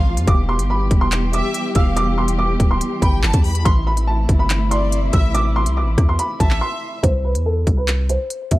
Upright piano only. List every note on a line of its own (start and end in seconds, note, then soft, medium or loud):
0.00 0.25 C6 medium
0.28 0.47 D6 loud
0.49 0.68 C6 medium
0.70 1.00 B5 medium
1.01 1.31 C6 medium
1.34 1.73 D6 medium
1.76 1.95 E6 medium
1.96 2.16 D6 loud
2.18 2.37 C6 medium
2.39 2.68 D6 medium
2.71 3.00 C6 medium
3.02 3.62 B5 medium
3.65 3.85 C6 loud
3.87 4.06 B5 medium
4.07 4.37 A5 medium
4.39 4.69 B5 medium
4.71 5.11 C6 medium
5.13 5.32 E6 medium
5.34 5.54 D6 loud
5.56 5.75 C6 medium
5.77 6.07 D6 medium
6.09 6.18 C6 medium
6.19 6.38 B5 medium
6.40 6.59 A5 medium
6.61 7.01 C6 medium
7.03 7.22 C5 loud
7.25 7.44 B4 medium
7.46 7.76 A4 medium
7.77 8.07 B4 medium
8.10 8.49 C5 medium
8.52 8.59 E5 medium